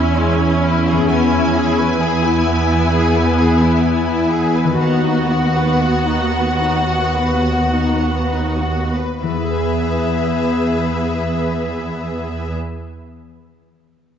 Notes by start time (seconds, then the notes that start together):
Already playing: E2 E3 C#4 E4 G#4 G#5
0.16 G#3
0.40 C#4
0.64 E4
0.86 G#4
0.92 E3
0.96 B3
1.01 E4
1.06 E2 B3 G#4 G#5
1.11 E4
1.32 E4
1.55 G#4
1.77 B4
2.00 B3 G#4
2.23 E4
2.46 B3
2.70 E4
2.91 G#4
3.15 B4
3.37 G#4
3.60 E4
3.83 B3
4.07 E4
4.31 G#4
4.55 B4
4.64 D#3
4.69 B3
4.73 F#4
4.78 B3 F#4 B4 F#5
4.82 D#2 B3
5.05 D#4
5.29 F#4
5.55 B4
5.80 F#4
6.06 D#4
6.33 B3
6.60 D#4
6.86 F#4
7.15 B4
7.43 F#4
7.73 D#4
8.01 B3
8.31 D#4
8.62 F#4
8.94 B4
9.21 E2 E3 B3 G#4 B4 E5
9.30 B3
9.37 E4
9.44 G#4
9.51 B4
9.58 G#5